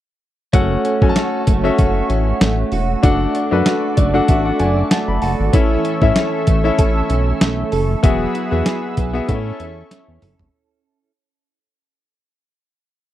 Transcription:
0.53 0.77 F#1 loud
0.53 1.47 A3 medium
0.53 0.89 C#4 medium
0.53 0.89 F#4 medium
0.53 0.89 A4 medium
0.53 0.90 F#5 medium
0.53 kick loud
0.53 closed hi-hat medium
0.85 2.09 C#4 medium
0.85 closed hi-hat medium
1.02 1.12 F#2 loud
1.02 1.47 C#4 medium
1.02 1.48 F#4 medium
1.02 1.48 A4 medium
1.02 1.08 G#5 medium
1.02 kick loud
1.09 1.51 A5 medium
1.16 1.78 F#4 medium
1.16 snare loud
1.16 closed hi-hat medium
1.47 1.71 F#1 medium
1.47 2.41 A3 medium
1.47 kick medium
1.47 closed hi-hat medium
1.64 2.58 C#4 medium
1.64 2.59 F#4 medium
1.64 2.59 A4 medium
1.64 2.59 E5 medium
1.78 2.02 F#1 loud
1.78 2.72 F#4 medium
1.78 kick medium
1.78 closed hi-hat medium
2.10 2.33 A1 loud
2.10 3.10 C#4 medium
2.10 closed hi-hat medium
2.41 2.64 A1 medium
2.41 3.03 A3 medium
2.41 snare loud
2.41 closed hi-hat medium
2.72 2.96 E1 medium
2.72 3.66 F#4 medium
2.72 open hi-hat medium
3.03 3.27 F#1 loud
3.03 3.97 A3 medium
3.03 3.39 D4 medium
3.03 3.39 F#4 medium
3.03 3.39 A4 medium
3.03 5.51 D5 medium
3.03 3.40 F#5 medium
3.03 kick loud
3.03 closed hi-hat medium
3.35 4.59 D4 medium
3.35 closed hi-hat medium
3.51 3.62 F#2 loud
3.51 3.97 D4 medium
3.51 3.98 F#4 medium
3.51 3.98 A4 medium
3.51 3.98 B4 medium
3.66 4.28 F#4 medium
3.66 snare loud
3.66 closed hi-hat medium
3.97 4.21 F#1 medium
3.97 4.91 A3 medium
3.97 4.26 D5 medium
3.97 kick medium
3.97 closed hi-hat medium
4.14 5.08 D4 medium
4.14 5.09 F#4 medium
4.14 5.09 A4 medium
4.14 4.44 F#5 medium
4.28 4.52 A1 loud
4.28 5.21 F#4 medium
4.28 4.44 E5 medium
4.28 kick medium
4.28 closed hi-hat medium
4.46 4.59 F#5 medium
4.60 4.83 F#1 loud
4.60 5.60 D4 medium
4.60 4.89 G#5 medium
4.60 closed hi-hat medium
4.91 6.47 A3 medium
4.91 5.07 A5 medium
4.91 snare loud
4.91 closed hi-hat medium
5.08 5.19 F#1 medium
5.08 5.21 B5 medium
5.22 5.35 F#1 medium
5.22 5.60 F#4 medium
5.22 5.51 A5 medium
5.22 open hi-hat medium
5.40 5.50 G#1 loud
5.53 5.77 A1 loud
5.53 8.03 E3 medium
5.53 5.89 C#4 medium
5.53 5.89 E4 medium
5.53 5.89 A4 medium
5.53 8.01 E5 medium
5.53 5.90 E5 medium
5.53 8.01 C#6 medium
5.53 8.01 E6 loud
5.53 kick loud
5.53 closed hi-hat medium
5.85 7.08 C#4 medium
5.85 closed hi-hat medium
6.02 6.12 A2 loud
6.02 6.47 C#4 medium
6.02 6.48 E4 medium
6.02 6.48 A4 medium
6.02 6.48 E5 medium
6.02 kick loud
6.16 6.77 A4 medium
6.16 snare loud
6.16 closed hi-hat medium
6.47 6.71 A1 medium
6.47 7.40 A3 medium
6.47 kick medium
6.47 closed hi-hat medium
6.64 7.58 C#4 medium
6.64 7.59 E4 medium
6.64 7.59 A4 medium
6.64 7.59 E5 medium
6.78 7.02 A1 loud
6.78 7.71 A4 medium
6.78 kick medium
6.78 closed hi-hat medium
7.09 7.33 B1 medium
7.09 8.10 C#4 medium
7.09 closed hi-hat medium
7.41 7.64 B1 medium
7.41 8.10 A3 medium
7.41 snare loud
7.41 closed hi-hat medium
7.72 7.96 F#1 medium
7.72 8.10 A4 medium
7.72 open hi-hat medium
8.03 8.27 E1 loud
8.03 9.35 F#3 medium
8.03 8.39 B3 medium
8.03 8.39 F#4 medium
8.03 9.27 G#4 medium
8.03 8.39 G#4 medium
8.03 8.40 E5 medium
8.03 9.27 F#5 medium
8.03 9.27 B5 medium
8.03 10.51 E6 medium
8.03 kick loud
8.03 closed hi-hat medium
8.35 9.60 E4 medium
8.35 closed hi-hat medium
8.51 8.63 E2 loud
8.51 8.97 B3 medium
8.51 8.97 F#4 medium
8.51 8.98 G#4 medium
8.51 8.98 E5 medium
8.66 9.35 G#4 medium
8.66 snare loud
8.66 closed hi-hat medium
8.97 9.21 B1 medium
8.97 9.29 B3 medium
8.97 kick medium
8.97 closed hi-hat medium
9.13 9.26 B3 medium
9.13 9.28 F#4 medium
9.13 9.28 G#4 medium
9.13 9.28 E5 medium
9.28 9.52 A2 loud
9.28 9.35 B3 medium
9.28 9.91 C#4 medium
9.28 10.29 E4 medium
9.28 10.29 A4 medium
9.28 10.52 A4 medium
9.28 10.52 E5 medium
9.28 10.29 E5 medium
9.28 10.52 C#6 medium
9.28 kick medium
9.28 closed hi-hat medium
9.34 10.32 C#4 medium
9.60 9.83 E2 medium
9.60 11.11 E4 medium
9.60 closed hi-hat medium
9.91 11.10 C#4 medium
9.91 snare medium
9.91 closed hi-hat medium
10.08 10.19 E2 medium
10.22 10.35 F#1 medium
10.22 11.10 A4 medium
10.22 mid tom medium
10.22 open hi-hat medium
10.39 10.50 G#1 medium
10.39 floor tom medium

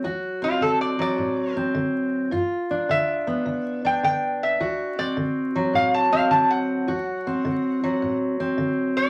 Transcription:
0.00 0.57 D2 medium
0.00 0.98 F#3 medium
0.04 2.30 F#4 medium
0.42 1.55 C4 medium
0.42 0.62 F4 medium
0.61 1.14 D3 medium
0.61 0.80 A4 medium
0.81 0.99 D5 medium
0.99 2.32 F#3 medium
0.99 1.56 D5 medium
1.18 1.71 A2 medium
1.57 2.30 C4 medium
1.75 2.28 D3 medium
2.31 2.85 G2 medium
2.31 4.57 F4 medium
2.71 3.84 D4 medium
2.89 3.42 D3 medium
2.89 3.82 E5 medium
3.27 4.58 B3 medium
3.46 3.99 D3 medium
3.85 4.98 D4 medium
3.85 4.03 G5 medium
4.03 4.56 D3 medium
4.03 4.40 G5 medium
4.43 4.97 E5 medium
4.60 5.13 D2 medium
4.60 6.88 F#4 medium
4.99 6.12 C4 medium
4.99 5.17 D5 medium
5.17 5.70 D3 medium
5.56 7.83 F#3 medium
5.74 6.27 A2 medium
5.74 5.93 F5 medium
5.94 6.12 A5 medium
6.13 6.90 C4 medium
6.13 6.30 F5 medium
6.30 6.83 D3 medium
6.30 6.49 A5 medium
6.50 8.17 F#5 medium
6.87 7.40 D2 medium
6.87 9.10 F#4 medium
7.27 8.39 C4 medium
7.45 7.98 D3 medium
7.84 9.10 F#3 medium
8.02 8.55 A2 medium
8.40 9.10 C4 medium
8.58 9.10 D3 medium
8.97 9.10 D5 loud

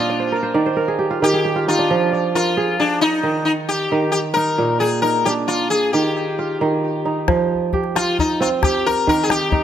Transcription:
0.00 0.60 A#2 medium
0.00 0.60 D4 medium
0.00 0.35 F4 medium
0.00 0.60 D#5 medium
0.00 0.87 F5 medium
0.00 0.24 G5 medium
0.10 0.54 D5 medium
0.20 0.42 C5 medium
0.32 0.76 A#4 medium
0.43 0.66 C5 medium
0.54 1.21 D#3 medium
0.54 1.28 D5 medium
0.66 1.85 C5 medium
0.77 2.04 A#4 medium
0.88 1.28 G#4 medium
0.99 1.22 G4 medium
1.10 1.55 F4 medium
1.22 1.94 D#3 medium
1.22 1.45 G4 medium
1.22 1.65 G4 medium
1.33 2.57 G#4 medium
1.45 2.63 G4 medium
1.56 3.07 F4 medium
1.68 2.18 D#4 medium
1.68 2.09 F4 medium
1.79 3.29 D4 medium
1.91 3.29 F3 medium
2.12 3.23 D5 medium
2.35 2.81 F4 medium
2.35 3.62 A#4 medium
2.57 2.79 G#4 medium
2.79 3.00 D4 medium
2.79 4.16 G#4 medium
3.01 3.44 D#4 medium
3.23 3.91 D#3 medium
3.45 3.51 D#4 medium
3.69 4.10 G4 medium
3.92 4.64 D#3 medium
4.12 4.18 G4 medium
4.34 5.03 D#4 medium
4.34 4.80 A#4 medium
4.58 5.98 A#2 medium
4.80 5.01 G#4 medium
4.80 5.74 G5 medium
5.02 6.65 D#4 medium
5.02 5.26 A#4 medium
5.25 6.00 D4 medium
5.25 5.32 G4 medium
5.48 5.69 F4 medium
5.48 6.59 D5 medium
5.70 5.92 G#4 medium
5.93 6.60 D#3 medium
5.93 7.01 G4 medium
6.39 7.90 F4 medium
6.61 7.33 D#3 medium
7.05 8.68 D#4 medium
7.28 8.68 F3 medium
7.28 calabash thump medium
7.28 calabash click medium
7.73 8.62 G4 medium
7.73 calabash thump medium
7.84 calabash click soft
7.95 9.47 F4 medium
7.95 8.17 F4 medium
7.95 calabash click medium
8.19 8.41 D#4 medium
8.19 calabash thump medium
8.40 9.64 C4 medium
8.40 8.47 F4 medium
8.62 9.64 G4 medium
8.62 8.84 G4 medium
8.62 calabash thump medium
8.62 calabash click medium
8.75 calabash click soft
8.86 9.07 A#4 medium
9.07 9.64 D#3 medium
9.07 9.24 A#4 medium
9.07 calabash thump medium
9.23 9.30 G#4 medium
9.29 9.52 D#4 medium
9.29 9.64 G4 medium
9.29 calabash click medium
9.52 9.64 D#4 medium
9.52 calabash thump medium
9.52 calabash click soft

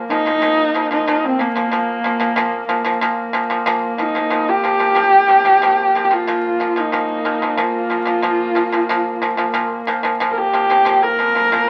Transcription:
0.00 0.40 A#3 medium
0.10 0.23 A#2 medium
0.10 0.23 F3 medium
0.10 0.87 D#4 loud
0.26 0.39 A#2 medium
0.26 0.39 F3 medium
0.41 0.68 A#2 medium
0.41 0.68 F3 medium
0.41 5.63 A#3 medium
0.74 0.87 A#2 medium
0.74 0.88 F3 medium
0.91 1.04 A#2 medium
0.91 1.04 F3 medium
0.91 1.27 D#4 medium
1.07 1.33 A#2 medium
1.07 1.33 F3 medium
1.25 1.43 C4 medium
1.39 1.52 A#2 medium
1.39 1.53 F3 medium
1.39 3.15 A#3 medium
1.55 1.68 A#2 medium
1.55 1.69 F3 medium
1.71 1.97 A#2 medium
1.71 1.98 F3 medium
2.04 2.17 A#2 medium
2.04 2.18 F3 medium
2.20 2.33 A#2 medium
2.20 2.33 F3 medium
2.36 2.62 A#2 loud
2.36 2.63 F3 loud
2.69 2.82 A#2 medium
2.69 2.82 F3 medium
2.84 2.98 A#2 medium
2.84 2.98 F3 medium
3.01 3.27 A#2 medium
3.01 3.28 F3 loud
3.33 3.47 A#2 medium
3.33 3.47 F3 medium
3.50 3.63 A#2 medium
3.50 3.63 F3 medium
3.66 3.92 A#2 loud
3.66 3.93 F3 loud
3.98 4.12 A#2 medium
3.98 4.12 F3 medium
3.98 4.51 D#4 medium
4.15 4.28 A#2 medium
4.15 4.29 F3 medium
4.30 4.57 A#2 medium
4.30 4.58 F3 medium
4.49 6.05 G4 loud
4.64 4.77 A#2 medium
4.64 4.77 F3 medium
4.79 4.93 A#2 medium
4.79 4.93 F3 medium
4.95 5.22 A#2 medium
4.95 5.23 F3 loud
5.28 5.42 A#2 medium
5.28 5.42 F3 medium
5.45 5.58 A#2 medium
5.45 5.59 F3 medium
5.62 5.88 A#2 medium
5.62 5.89 F3 loud
5.62 10.85 A#3 medium
5.95 6.08 A#2 medium
5.95 6.09 F3 medium
6.05 6.14 G4 medium
6.11 6.24 A#2 medium
6.11 6.24 F3 medium
6.11 6.81 F4 medium
6.27 6.53 A#2 medium
6.27 6.54 F3 medium
6.60 6.73 A#2 medium
6.60 6.73 F3 medium
6.76 6.89 A#2 medium
6.76 6.90 F3 medium
6.76 7.63 D#4 medium
6.92 7.19 A#2 medium
6.92 7.19 F3 medium
7.25 7.38 A#2 medium
7.25 7.39 F3 medium
7.42 7.55 A#2 medium
7.42 7.55 F3 medium
7.57 7.84 A#2 medium
7.57 7.84 F3 medium
7.62 9.51 F4 medium
7.90 8.03 A#2 medium
7.90 8.04 F3 medium
8.05 8.19 A#2 medium
8.05 8.20 F3 medium
8.22 8.49 A#2 medium
8.22 8.50 F3 medium
8.55 8.69 A#2 medium
8.55 8.69 F3 medium
8.72 8.86 A#2 medium
8.72 8.86 F3 medium
8.89 9.15 A#2 loud
8.89 9.16 F3 loud
9.22 9.35 A#2 medium
9.22 9.35 F3 medium
9.37 9.51 A#2 medium
9.37 9.51 F3 medium
9.54 9.80 A#2 medium
9.54 9.81 F3 loud
9.87 10.00 A#2 medium
9.87 10.01 F3 medium
10.03 10.17 A#2 medium
10.03 10.17 F3 medium
10.20 10.47 A#2 medium
10.20 10.47 F3 loud
10.32 10.39 A#4 medium
10.38 11.04 G4 loud
10.53 10.66 A#2 medium
10.53 10.67 F3 medium
10.70 10.83 A#2 medium
10.70 10.83 F3 medium
10.85 11.12 A#2 medium
10.85 11.12 F3 loud
10.85 11.70 A#3 medium
11.02 11.70 A#4 loud
11.19 11.32 A#2 medium
11.19 11.32 F3 medium
11.35 11.48 A#2 medium
11.35 11.49 F3 medium
11.52 11.70 A#2 medium
11.52 11.70 F3 loud

